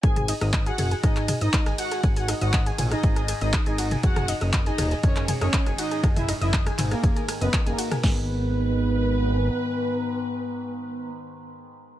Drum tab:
CC |----------------|----------------|----------------|----------------|
RD |--x---x---x---x-|--x---x---x---x-|--x---x---x---x-|--x---x---x---x-|
HH |xxoxxxoxxxoxxxox|xooxxxoxxxoxxxox|xxoxxxoxxxoxxxox|xooxxxoxxxoxxxox|
CP |----x----x--x---|----x-------x---|----x----x--x---|----x-x-----x---|
SD |r--r-r--r-r--r-r|--r-r--r-r--r-r-|-r-r--r-r--r-r--|r-r--r-r--r-r--r|
T2 |-o----o---o-----|------o--------o|-o----o---o-----|-o----o--------o|
BD |o---o---o---o---|o---o---o---o---|o---o---o---o---|o---o---o---o---|

CC |x---------------|----------------|
RD |----------------|----------------|
HH |----------------|----------------|
CP |----------------|----------------|
SD |o---------------|----------------|
T2 |----------------|----------------|
BD |o---------------|----------------|